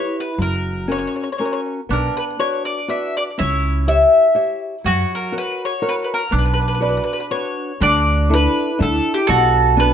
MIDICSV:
0, 0, Header, 1, 5, 480
1, 0, Start_track
1, 0, Key_signature, 2, "minor"
1, 0, Tempo, 497925
1, 376, Time_signature, 3, 2, 24, 8
1, 3262, Tempo, 491400
1, 9662, End_track
2, 0, Start_track
2, 0, Title_t, "Mandolin"
2, 0, Program_c, 0, 25
2, 0, Note_on_c, 0, 73, 68
2, 150, Note_off_c, 0, 73, 0
2, 196, Note_on_c, 0, 71, 65
2, 378, Note_off_c, 0, 71, 0
2, 403, Note_on_c, 0, 70, 75
2, 879, Note_off_c, 0, 70, 0
2, 882, Note_on_c, 0, 73, 61
2, 937, Note_off_c, 0, 73, 0
2, 949, Note_on_c, 0, 73, 40
2, 1016, Note_off_c, 0, 73, 0
2, 1034, Note_on_c, 0, 73, 43
2, 1099, Note_off_c, 0, 73, 0
2, 1117, Note_on_c, 0, 73, 33
2, 1171, Note_off_c, 0, 73, 0
2, 1189, Note_on_c, 0, 73, 38
2, 1239, Note_off_c, 0, 73, 0
2, 1274, Note_on_c, 0, 73, 38
2, 1315, Note_off_c, 0, 73, 0
2, 1333, Note_on_c, 0, 73, 38
2, 1383, Note_off_c, 0, 73, 0
2, 1401, Note_on_c, 0, 73, 37
2, 1461, Note_off_c, 0, 73, 0
2, 1473, Note_on_c, 0, 73, 46
2, 1537, Note_off_c, 0, 73, 0
2, 1858, Note_on_c, 0, 70, 52
2, 2087, Note_off_c, 0, 70, 0
2, 2091, Note_on_c, 0, 71, 55
2, 2149, Note_off_c, 0, 71, 0
2, 2310, Note_on_c, 0, 73, 72
2, 2552, Note_off_c, 0, 73, 0
2, 2556, Note_on_c, 0, 74, 61
2, 2764, Note_off_c, 0, 74, 0
2, 2791, Note_on_c, 0, 76, 65
2, 3033, Note_off_c, 0, 76, 0
2, 3054, Note_on_c, 0, 74, 73
2, 3111, Note_off_c, 0, 74, 0
2, 3268, Note_on_c, 0, 73, 65
2, 3711, Note_off_c, 0, 73, 0
2, 3747, Note_on_c, 0, 76, 70
2, 4442, Note_off_c, 0, 76, 0
2, 4710, Note_on_c, 0, 66, 61
2, 4945, Note_off_c, 0, 66, 0
2, 4986, Note_on_c, 0, 70, 70
2, 5171, Note_off_c, 0, 70, 0
2, 5211, Note_on_c, 0, 71, 82
2, 5437, Note_off_c, 0, 71, 0
2, 5477, Note_on_c, 0, 73, 71
2, 5679, Note_off_c, 0, 73, 0
2, 5707, Note_on_c, 0, 71, 78
2, 5756, Note_off_c, 0, 71, 0
2, 5860, Note_on_c, 0, 71, 44
2, 5922, Note_off_c, 0, 71, 0
2, 5953, Note_on_c, 0, 70, 71
2, 6138, Note_off_c, 0, 70, 0
2, 6192, Note_on_c, 0, 71, 60
2, 6240, Note_off_c, 0, 71, 0
2, 6264, Note_on_c, 0, 71, 42
2, 6315, Note_off_c, 0, 71, 0
2, 6339, Note_on_c, 0, 71, 51
2, 6393, Note_off_c, 0, 71, 0
2, 6418, Note_on_c, 0, 71, 37
2, 6464, Note_off_c, 0, 71, 0
2, 6480, Note_on_c, 0, 71, 44
2, 6525, Note_off_c, 0, 71, 0
2, 6543, Note_on_c, 0, 71, 41
2, 6590, Note_off_c, 0, 71, 0
2, 6616, Note_on_c, 0, 71, 51
2, 6664, Note_off_c, 0, 71, 0
2, 6687, Note_on_c, 0, 71, 37
2, 6744, Note_off_c, 0, 71, 0
2, 6765, Note_on_c, 0, 71, 43
2, 6819, Note_off_c, 0, 71, 0
2, 6830, Note_on_c, 0, 71, 45
2, 6896, Note_off_c, 0, 71, 0
2, 6920, Note_on_c, 0, 71, 47
2, 6968, Note_off_c, 0, 71, 0
2, 6990, Note_on_c, 0, 71, 45
2, 7037, Note_off_c, 0, 71, 0
2, 7098, Note_on_c, 0, 73, 67
2, 7599, Note_off_c, 0, 73, 0
2, 7603, Note_on_c, 0, 74, 83
2, 8048, Note_off_c, 0, 74, 0
2, 8099, Note_on_c, 0, 71, 84
2, 8537, Note_off_c, 0, 71, 0
2, 8575, Note_on_c, 0, 69, 87
2, 8863, Note_off_c, 0, 69, 0
2, 8885, Note_on_c, 0, 67, 80
2, 9028, Note_off_c, 0, 67, 0
2, 9036, Note_on_c, 0, 66, 73
2, 9472, Note_off_c, 0, 66, 0
2, 9526, Note_on_c, 0, 71, 87
2, 9662, Note_off_c, 0, 71, 0
2, 9662, End_track
3, 0, Start_track
3, 0, Title_t, "Nylon-string guitar"
3, 0, Program_c, 1, 24
3, 0, Note_on_c, 1, 64, 44
3, 0, Note_on_c, 1, 67, 32
3, 0, Note_on_c, 1, 71, 37
3, 283, Note_off_c, 1, 64, 0
3, 287, Note_off_c, 1, 67, 0
3, 288, Note_off_c, 1, 71, 0
3, 370, Note_on_c, 1, 54, 41
3, 835, Note_off_c, 1, 54, 0
3, 845, Note_on_c, 1, 61, 36
3, 849, Note_on_c, 1, 66, 32
3, 852, Note_on_c, 1, 70, 36
3, 1236, Note_off_c, 1, 61, 0
3, 1237, Note_off_c, 1, 66, 0
3, 1237, Note_off_c, 1, 70, 0
3, 1344, Note_on_c, 1, 61, 35
3, 1349, Note_on_c, 1, 66, 31
3, 1353, Note_on_c, 1, 70, 38
3, 1731, Note_off_c, 1, 61, 0
3, 1734, Note_off_c, 1, 66, 0
3, 1735, Note_off_c, 1, 70, 0
3, 1823, Note_on_c, 1, 59, 43
3, 2291, Note_off_c, 1, 59, 0
3, 2306, Note_on_c, 1, 66, 36
3, 2311, Note_on_c, 1, 71, 28
3, 2317, Note_on_c, 1, 74, 38
3, 2690, Note_off_c, 1, 66, 0
3, 2692, Note_off_c, 1, 71, 0
3, 2696, Note_off_c, 1, 74, 0
3, 2779, Note_on_c, 1, 66, 39
3, 2783, Note_on_c, 1, 71, 37
3, 2790, Note_on_c, 1, 74, 36
3, 3163, Note_off_c, 1, 66, 0
3, 3166, Note_off_c, 1, 71, 0
3, 3170, Note_off_c, 1, 74, 0
3, 3255, Note_on_c, 1, 61, 41
3, 3724, Note_off_c, 1, 61, 0
3, 3743, Note_on_c, 1, 67, 38
3, 3749, Note_on_c, 1, 76, 39
3, 3750, Note_on_c, 1, 73, 35
3, 4125, Note_off_c, 1, 67, 0
3, 4126, Note_off_c, 1, 73, 0
3, 4127, Note_off_c, 1, 76, 0
3, 4203, Note_on_c, 1, 67, 41
3, 4209, Note_on_c, 1, 73, 35
3, 4212, Note_on_c, 1, 76, 41
3, 4588, Note_off_c, 1, 67, 0
3, 4592, Note_off_c, 1, 73, 0
3, 4592, Note_off_c, 1, 76, 0
3, 4687, Note_on_c, 1, 54, 43
3, 5152, Note_off_c, 1, 54, 0
3, 5155, Note_on_c, 1, 66, 41
3, 5159, Note_on_c, 1, 70, 36
3, 5166, Note_on_c, 1, 73, 36
3, 5547, Note_off_c, 1, 66, 0
3, 5550, Note_off_c, 1, 70, 0
3, 5552, Note_off_c, 1, 73, 0
3, 5640, Note_on_c, 1, 66, 43
3, 5640, Note_on_c, 1, 70, 42
3, 5646, Note_on_c, 1, 73, 47
3, 6030, Note_off_c, 1, 70, 0
3, 6032, Note_off_c, 1, 66, 0
3, 6035, Note_off_c, 1, 73, 0
3, 6119, Note_on_c, 1, 59, 53
3, 6595, Note_off_c, 1, 59, 0
3, 6602, Note_on_c, 1, 66, 34
3, 6605, Note_on_c, 1, 71, 32
3, 6616, Note_on_c, 1, 74, 39
3, 6999, Note_off_c, 1, 66, 0
3, 7000, Note_off_c, 1, 71, 0
3, 7008, Note_off_c, 1, 74, 0
3, 7094, Note_on_c, 1, 66, 34
3, 7101, Note_on_c, 1, 62, 41
3, 7102, Note_on_c, 1, 71, 29
3, 7489, Note_off_c, 1, 66, 0
3, 7492, Note_off_c, 1, 71, 0
3, 7493, Note_off_c, 1, 62, 0
3, 7580, Note_on_c, 1, 50, 50
3, 8056, Note_off_c, 1, 50, 0
3, 8059, Note_on_c, 1, 62, 41
3, 8066, Note_on_c, 1, 64, 40
3, 8068, Note_on_c, 1, 69, 47
3, 8453, Note_off_c, 1, 62, 0
3, 8455, Note_off_c, 1, 64, 0
3, 8457, Note_off_c, 1, 69, 0
3, 8540, Note_on_c, 1, 64, 40
3, 8543, Note_on_c, 1, 62, 47
3, 8550, Note_on_c, 1, 69, 47
3, 8928, Note_off_c, 1, 64, 0
3, 8931, Note_off_c, 1, 62, 0
3, 8932, Note_off_c, 1, 69, 0
3, 9027, Note_on_c, 1, 47, 56
3, 9486, Note_off_c, 1, 47, 0
3, 9495, Note_on_c, 1, 59, 43
3, 9501, Note_on_c, 1, 62, 38
3, 9501, Note_on_c, 1, 66, 55
3, 9662, Note_off_c, 1, 59, 0
3, 9662, Note_off_c, 1, 62, 0
3, 9662, Note_off_c, 1, 66, 0
3, 9662, End_track
4, 0, Start_track
4, 0, Title_t, "Mandolin"
4, 0, Program_c, 2, 25
4, 1837, Note_on_c, 2, 62, 57
4, 3264, Note_on_c, 2, 64, 69
4, 3313, Note_off_c, 2, 62, 0
4, 4653, Note_off_c, 2, 64, 0
4, 4701, Note_on_c, 2, 66, 88
4, 6131, Note_on_c, 2, 62, 63
4, 6183, Note_off_c, 2, 66, 0
4, 7334, Note_off_c, 2, 62, 0
4, 7592, Note_on_c, 2, 62, 79
4, 9012, Note_on_c, 2, 69, 100
4, 9077, Note_off_c, 2, 62, 0
4, 9662, Note_off_c, 2, 69, 0
4, 9662, End_track
5, 0, Start_track
5, 0, Title_t, "Upright bass"
5, 0, Program_c, 3, 32
5, 371, Note_on_c, 3, 30, 72
5, 997, Note_off_c, 3, 30, 0
5, 1829, Note_on_c, 3, 35, 66
5, 2000, Note_off_c, 3, 35, 0
5, 3281, Note_on_c, 3, 37, 67
5, 3896, Note_off_c, 3, 37, 0
5, 4697, Note_on_c, 3, 42, 66
5, 4865, Note_off_c, 3, 42, 0
5, 6136, Note_on_c, 3, 35, 74
5, 6767, Note_off_c, 3, 35, 0
5, 7588, Note_on_c, 3, 38, 82
5, 8217, Note_off_c, 3, 38, 0
5, 8557, Note_on_c, 3, 38, 84
5, 8728, Note_off_c, 3, 38, 0
5, 9033, Note_on_c, 3, 35, 80
5, 9643, Note_off_c, 3, 35, 0
5, 9662, End_track
0, 0, End_of_file